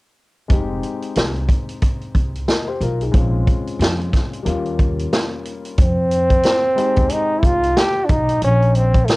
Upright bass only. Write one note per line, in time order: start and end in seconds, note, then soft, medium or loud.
0.50 0.80 F1 medium
1.16 1.46 C2 medium
2.15 2.45 C2 medium
2.81 3.10 B1 medium
3.14 3.44 A#1 medium
3.79 4.09 F2 medium
4.46 5.05 D#2 medium
5.78 6.37 F2 medium
6.97 7.09 D#2 medium
7.43 7.72 C2 medium
8.10 8.39 B1 medium
8.42 9.01 A#1 medium